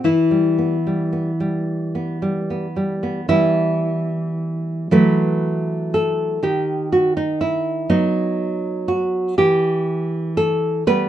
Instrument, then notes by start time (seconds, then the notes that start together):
nylon-string guitar
0.04 E3 E4
0.31 G3
0.58 B3
0.87 G3
1.13 B3
1.40 G3
1.95 B3
2.22 G3
2.50 B3
2.76 G3
3.03 B3
3.29 E3 G3 B3 E4
4.91 E3 F#3 A3 B4
5.94 A4
6.43 D#3 G4
6.92 F#4
7.17 D#4
7.41 E4
7.89 F#3 B3 D#4
8.88 F#4
9.38 E3 G4
10.37 A4
10.87 G3 B3 B4